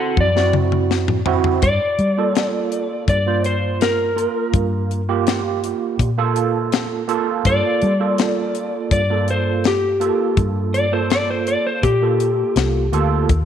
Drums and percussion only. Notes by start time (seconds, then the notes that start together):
0.17 kick, high tom
0.37 snare
0.53 mid tom
0.72 mid tom
0.91 snare
1.08 mid tom
1.26 floor tom
1.44 floor tom
1.62 kick, closed hi-hat
1.99 closed hi-hat
2.35 snare, closed hi-hat
2.72 closed hi-hat
3.08 kick, closed hi-hat
3.44 closed hi-hat
3.81 snare, closed hi-hat
4.18 closed hi-hat
4.54 kick, closed hi-hat
4.91 closed hi-hat
5.27 snare, closed hi-hat
5.64 closed hi-hat
5.99 kick, closed hi-hat
6.36 closed hi-hat
6.72 snare, closed hi-hat
7.09 closed hi-hat
7.45 kick, closed hi-hat
7.82 closed hi-hat
8.18 snare, closed hi-hat
8.55 closed hi-hat
8.91 kick, closed hi-hat
9.28 closed hi-hat
9.64 snare, closed hi-hat
10.01 closed hi-hat
10.37 kick, closed hi-hat
10.74 closed hi-hat
11.10 snare, closed hi-hat
11.47 closed hi-hat
11.83 kick, closed hi-hat
12.20 closed hi-hat
12.56 snare, closed hi-hat
12.93 closed hi-hat
13.29 kick, closed hi-hat